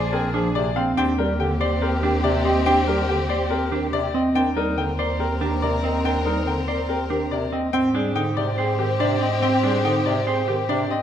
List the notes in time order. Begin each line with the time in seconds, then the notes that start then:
Already playing: A#1 D4 G#4 C5 D5
0.12 C4 G#4 A#4
0.34 F3 D4 G#4
0.55 C3 G#4 D5
0.76 C4 F5
0.97 D#2 C4 D4 G4 G5
1.18 G3 G4 A#4
1.39 D3 G4 G5
1.60 G4 C5 D5
1.81 C4 G4 A#4
2.02 D#3 D4 G4
2.24 C3 G4 D5
2.44 C4 G4 D#5
2.66 C4 D4 G4 G5
2.87 G3 G4 A#4
3.08 D3 G4 G5
3.29 G4 C5 D5
3.50 C4 G4 A#4
3.71 D#3 D4 G4
3.92 C3 G4 D5
4.14 C4 D#5
4.35 D#2 C4 D4 A#4 G5
4.56 G3 D#4 A#4
4.77 D3 A#4 G5
4.98 A#4 C5 D5
5.19 C4 G4 A#4
5.40 D#3 D4 G4 A#4
5.61 C3 A#4 D5
5.83 C4 A#4 D#5
6.04 C4 D4 A#4 G5
6.25 G3 D#4 A#4
6.46 D3 A#4 G5
6.67 A#4 C5 D5
6.88 C4 G4 A#4
7.09 D#3 D4 G4 A#4
7.31 C3 A#4 D5
7.52 C4 D#5
7.73 G#2 C4 G4 C5 G5
7.94 G3 D4 G#4
8.16 D3 D#4 G5
8.37 C3 D5
8.58 C4 G#4 C5
8.79 D#3 G4
9.00 C3 D4 D5
9.21 C4 D#5
9.42 C4 G5
9.63 G3 D4 G#4
9.85 D3 D#4 G5
10.06 C3 D5
10.27 C4 G#4 C5
10.48 D#3 G4
10.69 C3 D4 D5
10.91 C4 D#5